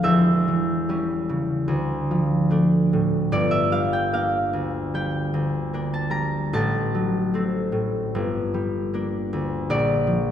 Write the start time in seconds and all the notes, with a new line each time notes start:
0.03 E1 E2 E5
0.48 E3
0.89 G3 C#4
1.29 C#3
1.68 D2
2.11 F3
2.50 A3 D4
2.93 A2
3.32 G1 D5
3.51 E5
3.72 G3 F5
3.93 G5
4.13 A#3 D4 F5
4.53 D2
4.94 G3 G5
5.34 D2
5.73 A#3 D4
5.94 A5
6.10 G3 A#5
6.53 A1 A5
6.95 F#3
7.34 A3 C4
7.72 A2
8.15 G1
8.54 G3
8.94 A#3 D4
9.33 D2
9.70 A#1 D5
10.07 F3